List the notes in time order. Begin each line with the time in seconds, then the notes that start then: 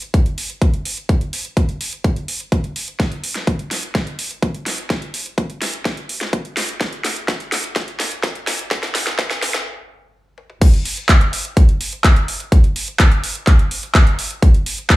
0.02 closed hi-hat
0.14 kick, closed hi-hat
0.26 closed hi-hat
0.38 open hi-hat
0.50 closed hi-hat
0.62 kick, closed hi-hat
0.74 closed hi-hat
0.85 open hi-hat
0.97 closed hi-hat
1.09 kick, closed hi-hat
1.21 closed hi-hat
1.33 open hi-hat
1.45 closed hi-hat
1.57 kick, closed hi-hat
1.69 closed hi-hat
1.81 open hi-hat
1.93 closed hi-hat
2.04 kick, closed hi-hat
2.16 closed hi-hat
2.28 open hi-hat
2.40 closed hi-hat
2.52 kick, closed hi-hat
2.64 closed hi-hat
2.76 open hi-hat
2.88 closed hi-hat
3.00 kick, snare, closed hi-hat
3.12 closed hi-hat
3.24 open hi-hat
3.35 snare, closed hi-hat
3.47 kick, closed hi-hat
3.59 closed hi-hat
3.71 snare, open hi-hat
3.83 closed hi-hat
3.95 kick, snare, closed hi-hat
4.07 closed hi-hat
4.19 open hi-hat
4.31 closed hi-hat
4.42 kick, closed hi-hat
4.54 closed hi-hat
4.66 snare, open hi-hat
4.78 closed hi-hat
4.90 kick, snare, closed hi-hat
5.02 closed hi-hat
5.14 open hi-hat
5.26 closed hi-hat
5.38 kick, closed hi-hat
5.50 closed hi-hat
5.62 snare, open hi-hat
5.74 closed hi-hat
5.85 kick, snare, closed hi-hat
5.97 closed hi-hat
6.09 open hi-hat
6.21 snare, closed hi-hat
6.33 kick, closed hi-hat
6.45 closed hi-hat
6.57 snare, open hi-hat
6.69 closed hi-hat
6.81 kick, snare, closed hi-hat
6.93 closed hi-hat
7.04 snare, open hi-hat
7.16 closed hi-hat
7.28 kick, snare, closed hi-hat
7.40 closed hi-hat
7.52 snare, open hi-hat
7.64 closed hi-hat
7.76 kick, snare, closed hi-hat
7.88 closed hi-hat
8.00 snare, open hi-hat
8.12 closed hi-hat
8.23 kick, snare, closed hi-hat
8.35 closed hi-hat
8.47 snare, open hi-hat
8.59 closed hi-hat
8.71 kick, snare, closed hi-hat
8.83 snare, closed hi-hat
8.95 snare, open hi-hat
9.07 snare
9.19 kick, snare, closed hi-hat
9.31 snare, closed hi-hat
9.42 snare, open hi-hat
9.54 snare
10.38 high tom
10.50 mid tom
10.62 kick, closed hi-hat, crash
10.74 closed hi-hat
10.85 open hi-hat
10.97 closed hi-hat
11.09 kick, clap, closed hi-hat
11.21 closed hi-hat
11.33 open hi-hat
11.45 closed hi-hat
11.57 kick, closed hi-hat
11.69 closed hi-hat
11.81 open hi-hat
11.93 closed hi-hat
12.04 kick, clap, closed hi-hat
12.16 closed hi-hat
12.28 open hi-hat
12.40 closed hi-hat
12.52 kick, closed hi-hat
12.64 closed hi-hat
12.76 open hi-hat
12.88 closed hi-hat
12.99 kick, clap, closed hi-hat
13.12 closed hi-hat
13.24 open hi-hat
13.35 closed hi-hat
13.47 kick, clap, closed hi-hat
13.59 closed hi-hat
13.71 open hi-hat
13.83 closed hi-hat
13.95 kick, clap, closed hi-hat
14.07 closed hi-hat
14.19 open hi-hat
14.31 closed hi-hat
14.42 kick, closed hi-hat
14.54 closed hi-hat
14.66 open hi-hat
14.78 closed hi-hat
14.90 kick, clap, closed hi-hat